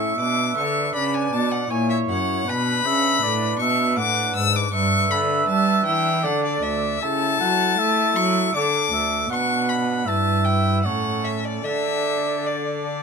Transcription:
0.00 0.15 A2 soft
0.00 0.17 A2 medium
0.00 0.12 A3 soft
0.00 0.13 C#4 soft
0.00 0.14 E4 soft
0.00 0.95 E5 medium
0.00 0.19 C#6 medium
0.16 0.55 B2 medium
0.16 0.53 B2 soft
0.16 1.64 D4 soft
0.16 1.65 B4 soft
0.20 0.57 D6 medium
0.57 0.91 D3 medium
0.57 0.94 D3 medium
0.57 0.94 C#6 medium
0.94 1.28 C#3 soft
0.94 1.31 C#3 medium
0.94 1.69 D5 medium
0.94 1.16 B5 medium
1.14 1.34 G#5 medium
1.32 1.69 B2 medium
1.32 1.66 B2 medium
1.32 1.53 A5 medium
1.52 1.72 F#5 medium
1.66 2.04 A#2 medium
1.66 2.08 A#2 medium
1.66 2.43 E4 soft
1.66 2.44 C#5 soft
1.70 2.49 C#5 medium
1.70 1.89 G#5 medium
1.90 1.98 E5 medium
2.08 2.43 F#2 medium
2.08 2.46 F#2 medium
2.08 2.51 F#5 medium
2.44 2.84 B2 medium
2.44 2.82 B2 medium
2.44 4.67 D4 soft
2.44 4.69 B4 soft
2.44 2.88 B4 medium
2.49 3.59 B5 loud
2.85 3.21 C#3 medium
2.85 3.19 C#3 medium
2.85 3.24 E5 medium
3.22 3.58 A2 medium
3.22 3.56 A2 medium
3.22 3.60 D5 medium
3.59 3.98 B2 medium
3.59 3.94 B2 medium
3.59 3.99 E5 medium
3.59 3.97 C#6 medium
3.97 4.34 A2 medium
3.97 4.32 A2 medium
3.97 4.47 F#5 medium
3.97 4.35 D6 loud
4.34 4.72 G#2 medium
4.34 4.69 G#2 medium
4.34 4.58 E6 loud
4.56 4.73 D6 medium
4.69 5.09 G2 medium
4.69 5.07 G2 medium
4.69 6.18 D4 medium
4.69 6.19 B4 soft
4.74 6.25 E5 medium
4.74 5.12 C#6 loud
5.10 5.47 D3 medium
5.10 5.45 D3 medium
5.10 5.48 B5 medium
5.47 5.84 G3 medium
5.47 5.82 G3 medium
5.47 5.85 A5 medium
5.85 6.25 E3 medium
5.85 6.20 E3 medium
5.85 6.26 G5 loud
6.21 6.61 D3 medium
6.21 6.59 D3 medium
6.21 6.98 D4 soft
6.21 6.99 A4 medium
6.21 7.01 D5 medium
6.21 6.44 F#5 medium
6.44 6.64 D5 medium
6.62 7.01 D2 medium
6.62 6.99 D2 medium
6.62 7.03 E5 medium
7.00 7.39 C#3 medium
7.00 7.37 C#3 soft
7.00 8.50 E4 soft
7.00 8.50 A4 medium
7.00 7.40 E5 medium
7.00 8.18 A5 loud
7.40 7.77 F#3 medium
7.40 7.75 F#3 medium
7.40 7.80 F#5 medium
7.78 8.15 A3 medium
7.78 8.13 A3 medium
7.78 8.56 E5 medium
8.16 8.54 F#3 medium
8.16 8.51 F#3 medium
8.16 8.54 C#6 loud
8.51 8.89 D3 medium
8.51 9.26 D4 soft
8.51 9.28 A4 soft
8.51 8.93 D5 medium
8.55 8.91 D3 medium
8.55 9.29 D6 loud
8.92 9.29 D2 medium
8.92 9.27 D2 medium
8.92 9.30 E5 medium
9.28 10.08 B2 medium
9.28 10.03 B2 medium
9.28 10.03 D4 soft
9.28 10.04 B4 soft
9.28 10.08 F#5 medium
9.32 9.70 C#6 loud
9.69 10.09 B5 medium
10.04 10.86 G2 medium
10.04 10.81 G2 medium
10.04 10.81 E4 soft
10.04 10.82 B4 soft
10.04 10.87 E5 medium
10.04 10.46 A5 medium
10.44 10.82 G5 medium
10.82 11.66 A2 medium
10.82 11.62 A2 soft
10.82 11.62 C#4 soft
10.82 11.62 A4 soft
10.82 11.38 C#5 medium
10.82 11.25 F#5 medium
11.24 11.46 E5 medium
11.45 11.66 D5 medium
11.62 13.03 D3 soft
11.62 13.03 D3 medium
11.62 13.03 D4 soft
11.62 13.03 A4 soft
11.62 13.03 D5 medium
11.62 12.49 E5 medium
12.47 13.03 D5 medium

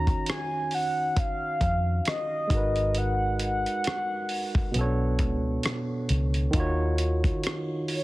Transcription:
0.00 0.13 D#2 loud
0.00 2.45 D#3 medium
0.00 2.47 C#4 soft
0.00 2.46 D#4 medium
0.00 2.48 F#4 medium
0.00 2.50 C#5 medium
0.00 0.31 A#5 loud
0.07 kick medium
0.07 closed hi-hat soft
0.26 0.76 G#5 loud
0.26 cross-stick loud
0.26 closed hi-hat medium
0.71 1.21 F#5 medium
0.71 open hi-hat soft
1.17 2.07 F5 loud
1.17 kick medium
1.17 closed hi-hat medium
1.61 1.99 F2 medium
1.61 kick medium
1.61 closed hi-hat soft
2.05 2.99 D#5 medium
2.05 cross-stick loud
2.05 closed hi-hat medium
2.47 3.64 G#1 medium
2.47 4.69 G#3 medium
2.47 4.70 D#4 medium
2.47 kick medium
2.47 closed hi-hat medium
2.52 4.71 F#4 medium
2.52 4.72 A#4 medium
2.57 4.74 B4 medium
2.76 closed hi-hat soft
2.95 3.41 F#5 medium
2.95 closed hi-hat medium
3.40 5.16 F#5 loud
3.40 closed hi-hat medium
3.66 closed hi-hat soft
3.84 cross-stick loud
3.84 closed hi-hat medium
4.29 open hi-hat soft
4.55 kick medium
4.72 5.20 B1 medium
4.72 6.48 B2 medium
4.72 6.50 B3 medium
4.72 closed hi-hat medium
4.76 4.83 C#4 soft
4.76 6.52 A4 medium
4.81 6.54 D4 medium
4.81 6.53 C#5 medium
5.19 5.57 C#2 medium
5.19 kick medium
5.19 closed hi-hat medium
5.63 cross-stick loud
5.63 closed hi-hat medium
6.09 6.47 C#2 medium
6.09 closed hi-hat medium
6.34 closed hi-hat soft
6.51 7.29 D#2 loud
6.51 8.04 D#3 medium
6.51 8.04 D#4 medium
6.51 kick loud
6.51 closed hi-hat medium
6.55 8.04 F4 medium
6.55 8.04 F#4 medium
6.60 8.04 C#5 medium
6.98 closed hi-hat medium
7.24 kick medium
7.24 closed hi-hat soft
7.44 cross-stick loud
7.44 closed hi-hat medium
7.88 8.04 C#5 medium
7.88 open hi-hat soft

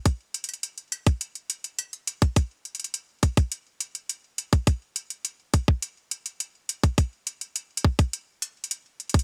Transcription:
0.06 kick loud
0.06 closed hi-hat medium
0.34 closed hi-hat medium
0.44 closed hi-hat medium
0.49 closed hi-hat soft
0.54 closed hi-hat soft
0.63 closed hi-hat medium
0.78 closed hi-hat soft
0.92 closed hi-hat medium
1.06 kick loud
1.06 closed hi-hat soft
1.21 closed hi-hat medium
1.35 closed hi-hat soft
1.50 closed hi-hat medium
1.64 closed hi-hat soft
1.79 closed hi-hat medium
1.93 closed hi-hat soft
2.07 closed hi-hat medium
2.22 kick loud
2.22 closed hi-hat soft
2.36 kick loud
2.36 closed hi-hat medium
2.65 closed hi-hat soft
2.75 closed hi-hat soft
2.80 closed hi-hat soft
2.84 closed hi-hat medium
2.94 closed hi-hat medium
3.23 kick loud
3.23 closed hi-hat medium
3.37 kick loud
3.37 closed hi-hat soft
3.52 closed hi-hat medium
3.81 closed hi-hat medium
3.95 closed hi-hat soft
4.09 closed hi-hat medium
4.38 closed hi-hat medium
4.53 kick loud
4.53 closed hi-hat soft
4.67 kick loud
4.67 closed hi-hat medium
4.96 closed hi-hat medium
5.10 closed hi-hat soft
5.25 closed hi-hat medium
5.54 kick medium
5.54 closed hi-hat medium
5.68 kick loud
5.82 closed hi-hat medium
6.11 closed hi-hat medium
6.26 closed hi-hat soft
6.40 closed hi-hat medium
6.69 closed hi-hat medium
6.84 kick loud
6.84 closed hi-hat soft
6.98 kick loud
6.98 closed hi-hat medium
7.27 closed hi-hat medium
7.41 closed hi-hat soft
7.56 closed hi-hat medium
7.77 closed hi-hat medium
7.84 kick medium
7.99 kick loud
7.99 closed hi-hat soft
8.13 closed hi-hat medium
8.42 closed hi-hat medium
8.64 closed hi-hat soft
8.71 closed hi-hat medium
9.00 closed hi-hat soft
9.09 closed hi-hat soft
9.14 kick loud
9.14 closed hi-hat soft
9.19 closed hi-hat medium

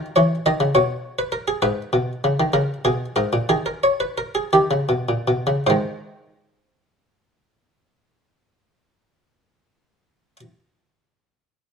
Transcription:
0.16 0.35 E3 medium
0.16 0.34 C#5 medium
0.46 0.60 D#3 medium
0.46 0.64 D#5 medium
0.60 0.75 C#3 medium
0.75 1.61 B2 medium
0.75 1.18 C#5 medium
1.19 1.33 B4 medium
1.32 1.48 A#4 medium
1.48 1.63 G#4 medium
1.62 1.82 G#2 loud
1.62 2.51 B4 loud
1.93 2.12 B2 loud
2.24 2.39 C#3 medium
2.40 2.55 D#3 medium
2.53 2.73 C#3 loud
2.53 2.73 A#4 medium
2.85 3.05 B2 medium
2.85 3.05 G#4 medium
3.16 3.33 G#2 loud
3.16 3.37 A#4 medium
3.33 3.49 A#2 medium
3.49 4.50 D#3 medium
3.49 3.66 G#4 medium
3.66 3.83 A#4 medium
3.84 4.00 C#5 medium
4.00 4.17 B4 medium
4.18 4.35 A#4 medium
4.35 4.53 G#4 medium
4.53 4.71 D#3 medium
4.53 5.63 G4 medium
4.71 4.89 C#3 medium
4.89 5.08 B2 medium
5.09 5.27 A#2 medium
5.28 5.47 B2 medium
5.47 5.66 C#3 medium
5.67 10.36 G#2 medium
5.67 10.40 D#3 medium
5.67 10.40 G#3 medium
5.67 10.37 C5 medium

